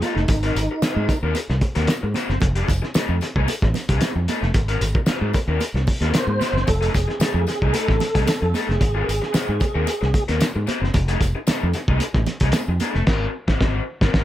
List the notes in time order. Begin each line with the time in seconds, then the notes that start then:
0.01 A3 D#4 F4 A4, closed hi-hat, tambourine, high conga
0.15 F1 D#4, muted overdriven electric guitar stroke, snare
0.28 G#1, muted overdriven electric guitar stroke, kick, closed hi-hat, tambourine, muted conga
0.43 C4 F#4 A#4, closed hi-hat
0.55 G#1, muted overdriven electric guitar stroke, closed hi-hat, tambourine
0.71 muted overdriven electric guitar stroke
0.82 C4 F#4 C5, muted fretless electric bass stroke, snare, closed hi-hat, tambourine, high conga
0.96 G#2
1.09 muted overdriven electric guitar stroke, kick, closed hi-hat, tambourine
1.22 D#2 C4 F#4 A#4
1.35 muted overdriven electric guitar stroke, closed hi-hat, tambourine, muted conga
1.49 C2, muted overdriven electric guitar stroke, snare
1.61 kick, closed hi-hat, muted conga
1.75 D#2 C4 F#4 A#4, snare, closed hi-hat
1.87 snare, closed hi-hat, tambourine, high conga
2.03 G#2, muted overdriven electric guitar stroke
2.14 C4 F#4 C5, snare, closed hi-hat, tambourine, high conga
2.29 F#1, muted overdriven electric guitar stroke, snare
2.41 F1, muted overdriven electric guitar stroke, kick, closed hi-hat, muted conga
2.56 A3 D#4 G#4, closed hi-hat
2.68 F1, muted overdriven electric guitar stroke, kick, closed hi-hat, tambourine, muted conga
2.82 muted overdriven electric guitar stroke, snare
2.94 A3 D#4 A4, muted fretless electric bass stroke, snare, closed hi-hat, tambourine, high conga
3.08 F2
3.21 muted overdriven electric guitar stroke, snare, closed hi-hat, tambourine
3.36 C2 A3 D#4 G#4, kick
3.48 muted overdriven electric guitar stroke, closed hi-hat, tambourine, muted conga
3.62 A1, muted overdriven electric guitar stroke, kick, snare
3.74 snare, closed hi-hat, tambourine, muted conga, low conga
3.89 C2 A3 D#4 G#4, kick, closed hi-hat
4.01 snare, closed hi-hat, tambourine, high conga
4.15 F2, muted overdriven electric guitar stroke
4.28 A3 D#4 A4, closed hi-hat, tambourine, high conga
4.42 F1, muted overdriven electric guitar stroke, snare
4.54 G#1, muted overdriven electric guitar stroke, kick, closed hi-hat, muted conga
4.68 C4 F#4 A#4, closed hi-hat
4.80 G#1, muted overdriven electric guitar stroke, closed hi-hat, tambourine
4.95 muted overdriven electric guitar stroke, kick
5.06 C4 F#4 C5, muted fretless electric bass stroke, snare, closed hi-hat, tambourine, high conga
5.21 G#2
5.33 muted overdriven electric guitar stroke, kick, closed hi-hat, tambourine
5.47 D#2 C4 F#4 A#4
5.61 muted overdriven electric guitar stroke, closed hi-hat, tambourine, muted conga
5.74 C2, muted overdriven electric guitar stroke, snare
5.87 kick, open hi-hat, muted conga
6.01 D#2 C4 F#4 A#4, snare, closed hi-hat
6.14 C5, snare, closed hi-hat, tambourine, high conga
6.27 G#2, muted overdriven electric guitar stroke, high conga
6.40 C4 F#4 C5, snare, closed hi-hat, tambourine, high conga
6.53 F#1, muted overdriven electric guitar stroke, snare
6.66 F1 A4, muted overdriven electric guitar stroke, kick, closed hi-hat, tambourine, muted conga
6.81 A3 D#4 G#4, closed hi-hat
6.94 F1 G#4, muted overdriven electric guitar stroke, kick, closed hi-hat, tambourine
7.08 muted overdriven electric guitar stroke, snare
7.19 A3 D#4 A4, muted fretless electric bass stroke, snare, closed hi-hat, tambourine, high conga
7.34 F2
7.47 G#4, muted overdriven electric guitar stroke, snare, closed hi-hat, tambourine
7.62 C2 A3 D#4 G#4, kick
7.73 A3 D#4 G#4 A4, closed hi-hat, tambourine, muted conga
7.88 A1, kick, snare
8.00 muted overdriven electric guitar stroke, snare, closed hi-hat, muted conga, low conga
8.15 C2 A3 D#4 G#4, kick, closed hi-hat
8.26 A4, snare, closed hi-hat, tambourine, high conga
8.42 F2, muted overdriven electric guitar stroke
8.54 A3 D#4 G#4 A4, closed hi-hat, tambourine, high conga
8.68 F1 G#4, muted overdriven electric guitar stroke, snare
8.81 G#1, muted overdriven electric guitar stroke, kick, closed hi-hat, tambourine, muted conga
8.95 C4 F#4 A#4
9.08 G#1, muted overdriven electric guitar stroke, closed hi-hat, tambourine
9.22 muted overdriven electric guitar stroke, snare
9.33 C4 F#4 C5, muted fretless electric bass stroke, snare, closed hi-hat, tambourine, high conga
9.48 G#2
9.60 muted overdriven electric guitar stroke, kick, closed hi-hat, tambourine
9.75 D#2 C4 F#4 A#4
9.87 muted overdriven electric guitar stroke, closed hi-hat, tambourine, muted conga
10.01 C2, muted overdriven electric guitar stroke, snare
10.14 kick, closed hi-hat, muted conga
10.28 D#2 C4 F#4 A#4, snare, closed hi-hat
10.41 snare, closed hi-hat, tambourine, high conga
10.55 G#2, muted overdriven electric guitar stroke
10.67 C4 F#4 C5, closed hi-hat, tambourine, high conga
10.81 F#1, muted overdriven electric guitar stroke, snare
10.94 F1, muted overdriven electric guitar stroke, kick, closed hi-hat, muted conga
11.08 A3 D#4 G#4, closed hi-hat
11.20 F1, muted overdriven electric guitar stroke, kick, closed hi-hat, tambourine
11.35 muted overdriven electric guitar stroke
11.47 A3 D#4 A4, muted fretless electric bass stroke, snare, closed hi-hat, tambourine, high conga
11.63 F2
11.73 muted overdriven electric guitar stroke, snare, closed hi-hat, tambourine
11.88 C2 A3 D#4 G#4, kick
12.00 muted overdriven electric guitar stroke, closed hi-hat, tambourine, muted conga
12.14 A1, muted overdriven electric guitar stroke, kick, snare
12.26 snare, closed hi-hat, muted conga, low conga
12.40 C2 A3 D#4 G#4, kick, closed hi-hat
12.52 snare, closed hi-hat, tambourine, high conga
12.68 F2, muted overdriven electric guitar stroke
12.80 A3 D#4 A4, closed hi-hat, tambourine, high conga
12.94 F1, muted overdriven electric guitar stroke, snare
13.07 G#1 C4 F#4 A#4, kick, snare, crash
13.48 G#1 C4 F#4 C5, kick, snare
13.60 G#1 C4 F#4 C5, kick, snare
14.01 G#1 C4 F#4 A#4, kick, snare
14.13 G#1 C4 F#4 A#4, kick, snare